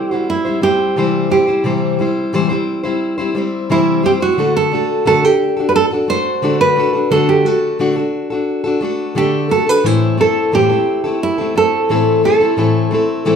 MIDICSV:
0, 0, Header, 1, 3, 480
1, 0, Start_track
1, 0, Tempo, 683371
1, 1162, Time_signature, 4, 2, 24, 8
1, 9381, End_track
2, 0, Start_track
2, 0, Title_t, "Nylon-string guitar"
2, 0, Program_c, 0, 24
2, 0, Note_on_c, 0, 67, 76
2, 78, Note_off_c, 0, 67, 0
2, 78, Note_on_c, 0, 66, 76
2, 206, Note_off_c, 0, 66, 0
2, 208, Note_on_c, 0, 64, 72
2, 441, Note_off_c, 0, 64, 0
2, 444, Note_on_c, 0, 67, 76
2, 915, Note_off_c, 0, 67, 0
2, 924, Note_on_c, 0, 67, 71
2, 1853, Note_off_c, 0, 67, 0
2, 2610, Note_on_c, 0, 64, 67
2, 2847, Note_off_c, 0, 64, 0
2, 2850, Note_on_c, 0, 67, 71
2, 2885, Note_off_c, 0, 67, 0
2, 2966, Note_on_c, 0, 66, 70
2, 3204, Note_off_c, 0, 66, 0
2, 3207, Note_on_c, 0, 69, 72
2, 3554, Note_off_c, 0, 69, 0
2, 3563, Note_on_c, 0, 69, 82
2, 3685, Note_off_c, 0, 69, 0
2, 3685, Note_on_c, 0, 67, 78
2, 3992, Note_off_c, 0, 67, 0
2, 3995, Note_on_c, 0, 71, 65
2, 4040, Note_off_c, 0, 71, 0
2, 4043, Note_on_c, 0, 69, 89
2, 4107, Note_off_c, 0, 69, 0
2, 4283, Note_on_c, 0, 72, 90
2, 4615, Note_off_c, 0, 72, 0
2, 4641, Note_on_c, 0, 71, 78
2, 4995, Note_off_c, 0, 71, 0
2, 4998, Note_on_c, 0, 69, 86
2, 5119, Note_on_c, 0, 67, 68
2, 5120, Note_off_c, 0, 69, 0
2, 5239, Note_off_c, 0, 67, 0
2, 5239, Note_on_c, 0, 66, 68
2, 6197, Note_off_c, 0, 66, 0
2, 6445, Note_on_c, 0, 67, 78
2, 6682, Note_on_c, 0, 69, 79
2, 6687, Note_off_c, 0, 67, 0
2, 6807, Note_off_c, 0, 69, 0
2, 6807, Note_on_c, 0, 71, 80
2, 6926, Note_off_c, 0, 71, 0
2, 6926, Note_on_c, 0, 72, 92
2, 7161, Note_off_c, 0, 72, 0
2, 7169, Note_on_c, 0, 69, 78
2, 7406, Note_off_c, 0, 69, 0
2, 7409, Note_on_c, 0, 67, 81
2, 7854, Note_off_c, 0, 67, 0
2, 7889, Note_on_c, 0, 64, 73
2, 8127, Note_off_c, 0, 64, 0
2, 8130, Note_on_c, 0, 69, 79
2, 8576, Note_off_c, 0, 69, 0
2, 8606, Note_on_c, 0, 69, 76
2, 9381, Note_off_c, 0, 69, 0
2, 9381, End_track
3, 0, Start_track
3, 0, Title_t, "Steel-string acoustic guitar"
3, 0, Program_c, 1, 25
3, 0, Note_on_c, 1, 55, 37
3, 0, Note_on_c, 1, 60, 42
3, 0, Note_on_c, 1, 64, 43
3, 78, Note_off_c, 1, 64, 0
3, 79, Note_on_c, 1, 72, 44
3, 87, Note_on_c, 1, 64, 42
3, 88, Note_off_c, 1, 60, 0
3, 94, Note_off_c, 1, 55, 0
3, 96, Note_on_c, 1, 60, 41
3, 102, Note_on_c, 1, 55, 36
3, 306, Note_off_c, 1, 72, 0
3, 314, Note_on_c, 1, 72, 47
3, 317, Note_off_c, 1, 64, 0
3, 324, Note_off_c, 1, 60, 0
3, 325, Note_on_c, 1, 64, 45
3, 332, Note_off_c, 1, 55, 0
3, 332, Note_on_c, 1, 60, 40
3, 340, Note_on_c, 1, 55, 38
3, 425, Note_off_c, 1, 55, 0
3, 433, Note_on_c, 1, 55, 48
3, 434, Note_off_c, 1, 60, 0
3, 439, Note_off_c, 1, 72, 0
3, 443, Note_on_c, 1, 60, 52
3, 444, Note_off_c, 1, 64, 0
3, 451, Note_on_c, 1, 64, 52
3, 457, Note_on_c, 1, 72, 56
3, 676, Note_off_c, 1, 55, 0
3, 676, Note_on_c, 1, 48, 64
3, 679, Note_off_c, 1, 60, 0
3, 680, Note_on_c, 1, 52, 65
3, 682, Note_off_c, 1, 64, 0
3, 684, Note_on_c, 1, 55, 73
3, 686, Note_off_c, 1, 72, 0
3, 687, Note_on_c, 1, 60, 76
3, 690, Note_on_c, 1, 64, 71
3, 694, Note_on_c, 1, 72, 72
3, 905, Note_off_c, 1, 55, 0
3, 912, Note_off_c, 1, 60, 0
3, 913, Note_on_c, 1, 55, 56
3, 919, Note_off_c, 1, 48, 0
3, 921, Note_off_c, 1, 52, 0
3, 921, Note_off_c, 1, 64, 0
3, 921, Note_on_c, 1, 60, 54
3, 928, Note_off_c, 1, 72, 0
3, 929, Note_on_c, 1, 64, 57
3, 936, Note_on_c, 1, 72, 61
3, 1023, Note_off_c, 1, 72, 0
3, 1032, Note_on_c, 1, 72, 45
3, 1033, Note_off_c, 1, 64, 0
3, 1037, Note_off_c, 1, 55, 0
3, 1041, Note_off_c, 1, 60, 0
3, 1041, Note_on_c, 1, 64, 45
3, 1049, Note_on_c, 1, 60, 41
3, 1057, Note_on_c, 1, 55, 39
3, 1150, Note_off_c, 1, 55, 0
3, 1151, Note_on_c, 1, 48, 71
3, 1154, Note_off_c, 1, 60, 0
3, 1156, Note_on_c, 1, 52, 62
3, 1157, Note_off_c, 1, 64, 0
3, 1157, Note_off_c, 1, 72, 0
3, 1158, Note_on_c, 1, 55, 71
3, 1163, Note_on_c, 1, 60, 63
3, 1166, Note_on_c, 1, 64, 67
3, 1169, Note_on_c, 1, 72, 75
3, 1387, Note_off_c, 1, 55, 0
3, 1395, Note_on_c, 1, 55, 53
3, 1396, Note_off_c, 1, 48, 0
3, 1396, Note_off_c, 1, 60, 0
3, 1398, Note_off_c, 1, 52, 0
3, 1403, Note_off_c, 1, 64, 0
3, 1404, Note_on_c, 1, 60, 53
3, 1405, Note_off_c, 1, 72, 0
3, 1411, Note_on_c, 1, 64, 59
3, 1419, Note_on_c, 1, 72, 56
3, 1634, Note_off_c, 1, 55, 0
3, 1635, Note_on_c, 1, 48, 72
3, 1640, Note_off_c, 1, 60, 0
3, 1640, Note_on_c, 1, 52, 75
3, 1641, Note_off_c, 1, 64, 0
3, 1643, Note_on_c, 1, 55, 83
3, 1646, Note_off_c, 1, 72, 0
3, 1649, Note_on_c, 1, 60, 78
3, 1649, Note_on_c, 1, 64, 78
3, 1655, Note_on_c, 1, 72, 82
3, 1742, Note_off_c, 1, 72, 0
3, 1750, Note_on_c, 1, 72, 54
3, 1752, Note_off_c, 1, 64, 0
3, 1758, Note_off_c, 1, 48, 0
3, 1759, Note_off_c, 1, 60, 0
3, 1760, Note_off_c, 1, 52, 0
3, 1760, Note_on_c, 1, 64, 51
3, 1762, Note_off_c, 1, 55, 0
3, 1768, Note_on_c, 1, 60, 48
3, 1776, Note_on_c, 1, 55, 48
3, 1983, Note_off_c, 1, 72, 0
3, 1991, Note_on_c, 1, 72, 54
3, 1992, Note_off_c, 1, 64, 0
3, 2000, Note_on_c, 1, 64, 49
3, 2001, Note_off_c, 1, 60, 0
3, 2008, Note_off_c, 1, 55, 0
3, 2010, Note_on_c, 1, 60, 46
3, 2016, Note_on_c, 1, 55, 41
3, 2223, Note_off_c, 1, 72, 0
3, 2232, Note_off_c, 1, 64, 0
3, 2232, Note_on_c, 1, 72, 57
3, 2241, Note_off_c, 1, 60, 0
3, 2241, Note_on_c, 1, 64, 53
3, 2248, Note_off_c, 1, 55, 0
3, 2250, Note_on_c, 1, 60, 47
3, 2257, Note_on_c, 1, 55, 48
3, 2343, Note_off_c, 1, 55, 0
3, 2351, Note_on_c, 1, 55, 59
3, 2352, Note_off_c, 1, 60, 0
3, 2356, Note_off_c, 1, 72, 0
3, 2359, Note_off_c, 1, 64, 0
3, 2361, Note_on_c, 1, 60, 61
3, 2367, Note_on_c, 1, 64, 67
3, 2375, Note_on_c, 1, 72, 62
3, 2594, Note_off_c, 1, 55, 0
3, 2596, Note_off_c, 1, 60, 0
3, 2596, Note_on_c, 1, 48, 66
3, 2598, Note_on_c, 1, 52, 67
3, 2600, Note_off_c, 1, 64, 0
3, 2602, Note_on_c, 1, 55, 67
3, 2603, Note_off_c, 1, 72, 0
3, 2604, Note_on_c, 1, 60, 79
3, 2608, Note_on_c, 1, 64, 77
3, 2611, Note_on_c, 1, 72, 82
3, 2822, Note_off_c, 1, 55, 0
3, 2830, Note_on_c, 1, 55, 55
3, 2831, Note_off_c, 1, 60, 0
3, 2837, Note_off_c, 1, 48, 0
3, 2838, Note_off_c, 1, 52, 0
3, 2839, Note_on_c, 1, 60, 55
3, 2840, Note_off_c, 1, 64, 0
3, 2845, Note_off_c, 1, 72, 0
3, 2848, Note_on_c, 1, 64, 54
3, 2854, Note_on_c, 1, 72, 57
3, 2944, Note_off_c, 1, 72, 0
3, 2952, Note_on_c, 1, 72, 51
3, 2955, Note_off_c, 1, 55, 0
3, 2955, Note_off_c, 1, 64, 0
3, 2959, Note_off_c, 1, 60, 0
3, 2963, Note_on_c, 1, 64, 48
3, 2969, Note_on_c, 1, 60, 40
3, 2977, Note_on_c, 1, 55, 38
3, 3071, Note_on_c, 1, 50, 66
3, 3075, Note_off_c, 1, 55, 0
3, 3076, Note_off_c, 1, 72, 0
3, 3078, Note_on_c, 1, 57, 69
3, 3079, Note_off_c, 1, 60, 0
3, 3081, Note_off_c, 1, 64, 0
3, 3082, Note_on_c, 1, 62, 74
3, 3087, Note_on_c, 1, 66, 77
3, 3090, Note_on_c, 1, 69, 75
3, 3304, Note_off_c, 1, 57, 0
3, 3312, Note_on_c, 1, 57, 55
3, 3314, Note_off_c, 1, 62, 0
3, 3315, Note_off_c, 1, 50, 0
3, 3321, Note_off_c, 1, 66, 0
3, 3322, Note_on_c, 1, 62, 57
3, 3324, Note_off_c, 1, 69, 0
3, 3329, Note_on_c, 1, 66, 58
3, 3335, Note_on_c, 1, 69, 54
3, 3546, Note_off_c, 1, 57, 0
3, 3550, Note_on_c, 1, 50, 61
3, 3551, Note_off_c, 1, 62, 0
3, 3554, Note_on_c, 1, 57, 70
3, 3555, Note_off_c, 1, 66, 0
3, 3559, Note_on_c, 1, 62, 71
3, 3560, Note_off_c, 1, 69, 0
3, 3563, Note_on_c, 1, 66, 76
3, 3568, Note_on_c, 1, 69, 73
3, 3660, Note_off_c, 1, 69, 0
3, 3668, Note_on_c, 1, 69, 45
3, 3674, Note_off_c, 1, 50, 0
3, 3676, Note_off_c, 1, 57, 0
3, 3678, Note_off_c, 1, 62, 0
3, 3680, Note_off_c, 1, 66, 0
3, 3691, Note_on_c, 1, 62, 42
3, 3902, Note_off_c, 1, 69, 0
3, 3910, Note_on_c, 1, 69, 48
3, 3924, Note_off_c, 1, 62, 0
3, 3926, Note_on_c, 1, 66, 44
3, 3936, Note_on_c, 1, 62, 41
3, 4140, Note_off_c, 1, 69, 0
3, 4149, Note_on_c, 1, 69, 49
3, 4153, Note_off_c, 1, 66, 0
3, 4162, Note_on_c, 1, 66, 44
3, 4166, Note_off_c, 1, 62, 0
3, 4174, Note_on_c, 1, 62, 37
3, 4270, Note_on_c, 1, 57, 54
3, 4271, Note_off_c, 1, 62, 0
3, 4273, Note_off_c, 1, 69, 0
3, 4279, Note_off_c, 1, 66, 0
3, 4279, Note_on_c, 1, 62, 57
3, 4287, Note_on_c, 1, 66, 57
3, 4294, Note_on_c, 1, 69, 61
3, 4506, Note_off_c, 1, 57, 0
3, 4511, Note_on_c, 1, 50, 72
3, 4513, Note_off_c, 1, 62, 0
3, 4515, Note_on_c, 1, 57, 70
3, 4516, Note_off_c, 1, 66, 0
3, 4520, Note_off_c, 1, 69, 0
3, 4521, Note_on_c, 1, 62, 74
3, 4524, Note_on_c, 1, 66, 77
3, 4529, Note_on_c, 1, 69, 75
3, 4739, Note_off_c, 1, 57, 0
3, 4747, Note_on_c, 1, 57, 52
3, 4748, Note_off_c, 1, 62, 0
3, 4753, Note_off_c, 1, 50, 0
3, 4757, Note_off_c, 1, 66, 0
3, 4757, Note_on_c, 1, 62, 51
3, 4762, Note_off_c, 1, 69, 0
3, 4766, Note_on_c, 1, 66, 53
3, 4772, Note_on_c, 1, 69, 63
3, 4860, Note_off_c, 1, 69, 0
3, 4869, Note_on_c, 1, 69, 49
3, 4872, Note_off_c, 1, 57, 0
3, 4874, Note_off_c, 1, 66, 0
3, 4876, Note_off_c, 1, 62, 0
3, 4882, Note_on_c, 1, 66, 47
3, 4893, Note_on_c, 1, 62, 43
3, 4992, Note_off_c, 1, 69, 0
3, 4992, Note_on_c, 1, 50, 65
3, 4993, Note_off_c, 1, 62, 0
3, 4998, Note_on_c, 1, 57, 68
3, 4999, Note_off_c, 1, 66, 0
3, 5001, Note_on_c, 1, 62, 72
3, 5006, Note_on_c, 1, 66, 74
3, 5009, Note_on_c, 1, 69, 79
3, 5224, Note_off_c, 1, 57, 0
3, 5232, Note_off_c, 1, 62, 0
3, 5232, Note_on_c, 1, 57, 50
3, 5234, Note_off_c, 1, 50, 0
3, 5240, Note_on_c, 1, 62, 52
3, 5241, Note_off_c, 1, 66, 0
3, 5243, Note_off_c, 1, 69, 0
3, 5249, Note_on_c, 1, 66, 57
3, 5256, Note_on_c, 1, 69, 60
3, 5469, Note_off_c, 1, 57, 0
3, 5472, Note_on_c, 1, 50, 67
3, 5474, Note_off_c, 1, 62, 0
3, 5477, Note_off_c, 1, 66, 0
3, 5478, Note_on_c, 1, 57, 63
3, 5481, Note_off_c, 1, 69, 0
3, 5483, Note_on_c, 1, 62, 68
3, 5485, Note_on_c, 1, 66, 77
3, 5489, Note_on_c, 1, 69, 70
3, 5582, Note_off_c, 1, 69, 0
3, 5591, Note_on_c, 1, 69, 48
3, 5594, Note_off_c, 1, 50, 0
3, 5594, Note_off_c, 1, 66, 0
3, 5597, Note_off_c, 1, 57, 0
3, 5599, Note_off_c, 1, 62, 0
3, 5602, Note_on_c, 1, 66, 41
3, 5614, Note_on_c, 1, 62, 41
3, 5823, Note_off_c, 1, 69, 0
3, 5832, Note_on_c, 1, 69, 54
3, 5836, Note_off_c, 1, 66, 0
3, 5844, Note_on_c, 1, 66, 46
3, 5845, Note_off_c, 1, 62, 0
3, 5856, Note_on_c, 1, 62, 43
3, 6060, Note_off_c, 1, 69, 0
3, 6068, Note_on_c, 1, 69, 53
3, 6074, Note_off_c, 1, 66, 0
3, 6083, Note_on_c, 1, 66, 47
3, 6085, Note_off_c, 1, 62, 0
3, 6093, Note_on_c, 1, 62, 43
3, 6187, Note_on_c, 1, 57, 63
3, 6188, Note_off_c, 1, 62, 0
3, 6192, Note_off_c, 1, 69, 0
3, 6195, Note_off_c, 1, 66, 0
3, 6196, Note_on_c, 1, 62, 64
3, 6203, Note_on_c, 1, 66, 64
3, 6211, Note_on_c, 1, 69, 71
3, 6425, Note_off_c, 1, 57, 0
3, 6427, Note_on_c, 1, 50, 65
3, 6430, Note_off_c, 1, 62, 0
3, 6434, Note_on_c, 1, 57, 67
3, 6437, Note_off_c, 1, 69, 0
3, 6438, Note_on_c, 1, 62, 74
3, 6439, Note_off_c, 1, 66, 0
3, 6446, Note_on_c, 1, 69, 75
3, 6659, Note_off_c, 1, 57, 0
3, 6668, Note_on_c, 1, 57, 53
3, 6669, Note_off_c, 1, 62, 0
3, 6671, Note_off_c, 1, 50, 0
3, 6678, Note_on_c, 1, 62, 51
3, 6680, Note_off_c, 1, 69, 0
3, 6686, Note_on_c, 1, 66, 54
3, 6693, Note_on_c, 1, 69, 57
3, 6781, Note_off_c, 1, 69, 0
3, 6789, Note_on_c, 1, 69, 46
3, 6791, Note_off_c, 1, 57, 0
3, 6793, Note_off_c, 1, 66, 0
3, 6796, Note_off_c, 1, 62, 0
3, 6802, Note_on_c, 1, 66, 43
3, 6813, Note_on_c, 1, 62, 39
3, 6910, Note_on_c, 1, 45, 71
3, 6912, Note_off_c, 1, 69, 0
3, 6913, Note_on_c, 1, 52, 67
3, 6918, Note_off_c, 1, 66, 0
3, 6918, Note_on_c, 1, 57, 72
3, 6919, Note_off_c, 1, 62, 0
3, 6922, Note_on_c, 1, 60, 68
3, 6923, Note_on_c, 1, 64, 73
3, 6927, Note_on_c, 1, 69, 75
3, 7139, Note_off_c, 1, 57, 0
3, 7146, Note_off_c, 1, 60, 0
3, 7147, Note_on_c, 1, 57, 54
3, 7153, Note_off_c, 1, 45, 0
3, 7154, Note_off_c, 1, 52, 0
3, 7154, Note_on_c, 1, 60, 53
3, 7155, Note_off_c, 1, 64, 0
3, 7161, Note_off_c, 1, 69, 0
3, 7163, Note_on_c, 1, 64, 61
3, 7169, Note_on_c, 1, 69, 61
3, 7388, Note_on_c, 1, 45, 67
3, 7389, Note_off_c, 1, 57, 0
3, 7391, Note_off_c, 1, 60, 0
3, 7393, Note_off_c, 1, 64, 0
3, 7393, Note_on_c, 1, 52, 62
3, 7396, Note_off_c, 1, 69, 0
3, 7397, Note_on_c, 1, 57, 67
3, 7400, Note_on_c, 1, 60, 71
3, 7402, Note_on_c, 1, 64, 66
3, 7405, Note_on_c, 1, 69, 67
3, 7503, Note_off_c, 1, 69, 0
3, 7512, Note_off_c, 1, 45, 0
3, 7512, Note_off_c, 1, 64, 0
3, 7512, Note_on_c, 1, 69, 50
3, 7514, Note_off_c, 1, 52, 0
3, 7516, Note_off_c, 1, 57, 0
3, 7517, Note_off_c, 1, 60, 0
3, 7521, Note_on_c, 1, 64, 41
3, 7529, Note_on_c, 1, 60, 39
3, 7535, Note_on_c, 1, 57, 37
3, 7746, Note_off_c, 1, 69, 0
3, 7754, Note_on_c, 1, 69, 48
3, 7755, Note_off_c, 1, 64, 0
3, 7762, Note_off_c, 1, 60, 0
3, 7763, Note_on_c, 1, 64, 44
3, 7765, Note_off_c, 1, 57, 0
3, 7769, Note_on_c, 1, 60, 43
3, 7778, Note_on_c, 1, 57, 39
3, 7985, Note_off_c, 1, 69, 0
3, 7994, Note_on_c, 1, 69, 47
3, 7995, Note_off_c, 1, 64, 0
3, 8003, Note_off_c, 1, 60, 0
3, 8003, Note_on_c, 1, 64, 47
3, 8007, Note_off_c, 1, 57, 0
3, 8012, Note_on_c, 1, 60, 41
3, 8017, Note_on_c, 1, 57, 40
3, 8108, Note_off_c, 1, 57, 0
3, 8115, Note_off_c, 1, 69, 0
3, 8116, Note_off_c, 1, 60, 0
3, 8116, Note_on_c, 1, 57, 55
3, 8120, Note_off_c, 1, 64, 0
3, 8125, Note_on_c, 1, 60, 59
3, 8133, Note_on_c, 1, 64, 57
3, 8141, Note_on_c, 1, 69, 55
3, 8352, Note_off_c, 1, 57, 0
3, 8352, Note_on_c, 1, 45, 69
3, 8355, Note_off_c, 1, 60, 0
3, 8356, Note_on_c, 1, 52, 74
3, 8359, Note_off_c, 1, 64, 0
3, 8361, Note_off_c, 1, 69, 0
3, 8361, Note_on_c, 1, 57, 67
3, 8364, Note_on_c, 1, 60, 75
3, 8367, Note_on_c, 1, 64, 70
3, 8369, Note_on_c, 1, 69, 82
3, 8582, Note_off_c, 1, 57, 0
3, 8591, Note_on_c, 1, 57, 51
3, 8592, Note_off_c, 1, 60, 0
3, 8594, Note_off_c, 1, 45, 0
3, 8596, Note_off_c, 1, 52, 0
3, 8600, Note_off_c, 1, 64, 0
3, 8600, Note_on_c, 1, 60, 55
3, 8603, Note_off_c, 1, 69, 0
3, 8608, Note_on_c, 1, 64, 58
3, 8617, Note_on_c, 1, 69, 60
3, 8701, Note_off_c, 1, 69, 0
3, 8709, Note_off_c, 1, 64, 0
3, 8709, Note_on_c, 1, 69, 47
3, 8714, Note_off_c, 1, 57, 0
3, 8716, Note_off_c, 1, 60, 0
3, 8718, Note_on_c, 1, 64, 47
3, 8724, Note_on_c, 1, 60, 45
3, 8734, Note_on_c, 1, 57, 41
3, 8827, Note_off_c, 1, 57, 0
3, 8827, Note_on_c, 1, 45, 65
3, 8832, Note_off_c, 1, 60, 0
3, 8833, Note_off_c, 1, 64, 0
3, 8833, Note_off_c, 1, 69, 0
3, 8833, Note_on_c, 1, 52, 72
3, 8835, Note_on_c, 1, 57, 67
3, 8840, Note_on_c, 1, 60, 69
3, 8842, Note_on_c, 1, 64, 74
3, 8845, Note_on_c, 1, 69, 73
3, 9058, Note_off_c, 1, 57, 0
3, 9066, Note_on_c, 1, 57, 59
3, 9067, Note_off_c, 1, 60, 0
3, 9072, Note_off_c, 1, 45, 0
3, 9075, Note_off_c, 1, 52, 0
3, 9076, Note_on_c, 1, 60, 55
3, 9077, Note_off_c, 1, 64, 0
3, 9081, Note_off_c, 1, 69, 0
3, 9085, Note_on_c, 1, 64, 54
3, 9092, Note_on_c, 1, 69, 61
3, 9305, Note_off_c, 1, 57, 0
3, 9307, Note_on_c, 1, 45, 71
3, 9309, Note_off_c, 1, 60, 0
3, 9310, Note_on_c, 1, 52, 71
3, 9312, Note_off_c, 1, 64, 0
3, 9313, Note_on_c, 1, 57, 83
3, 9316, Note_off_c, 1, 69, 0
3, 9318, Note_on_c, 1, 60, 72
3, 9320, Note_on_c, 1, 64, 73
3, 9325, Note_on_c, 1, 69, 91
3, 9381, Note_off_c, 1, 45, 0
3, 9381, Note_off_c, 1, 52, 0
3, 9381, Note_off_c, 1, 57, 0
3, 9381, Note_off_c, 1, 60, 0
3, 9381, Note_off_c, 1, 64, 0
3, 9381, Note_off_c, 1, 69, 0
3, 9381, End_track
0, 0, End_of_file